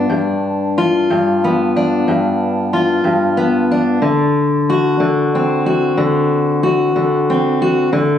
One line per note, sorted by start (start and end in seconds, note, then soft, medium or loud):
0.00 1.76 D4 medium
0.10 1.07 G2 medium
0.78 2.72 F4 medium
1.10 2.07 G2 medium
1.44 3.36 B3 medium
1.76 3.71 D4 medium
2.08 3.03 G2 medium
2.73 3.98 F4 medium
3.04 3.98 G2 medium
3.37 3.98 B3 medium
3.71 5.35 D4 medium
4.02 5.00 D3 medium
4.70 5.66 F#4 medium
5.00 5.97 D3 medium
5.35 7.29 C4 medium
5.66 6.62 F#4 medium
5.97 6.95 D3 medium
6.63 7.60 F#4 medium
6.96 7.91 D3 medium
7.30 7.90 C4 medium
7.62 7.89 F#4 medium
7.93 8.18 D3 medium